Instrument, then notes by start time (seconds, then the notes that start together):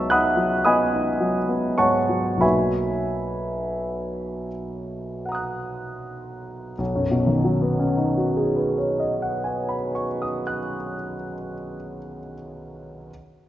grand piano
Already playing: C#2 F#3 B3 D#4 E5 A5 C#6 E6
0.10 D#4 F#5 B5 D#6 F#6
0.37 F#3
0.65 B3 D#5 G#5 B5 D#6
0.92 D#4
1.20 F#3
1.49 B3
1.78 G#2 C#5 F#5 A5 C#6
2.09 F#3
2.37 B1 F#3 A#3 D#4 F#4 B5
2.42 B4 E5 G#5
5.25 F#5 A#5
5.32 D#6 F#6
6.78 B1
6.95 F#2
7.11 B2
7.27 D#3
7.45 F#3
7.61 B3
7.80 C#4
7.97 D#4
8.17 F#4
8.37 G#4
8.56 B4
8.78 C#5
9.00 D#5
9.22 F#5
9.44 G#5
9.69 B5
9.95 C#6
10.22 D#6
10.47 F#6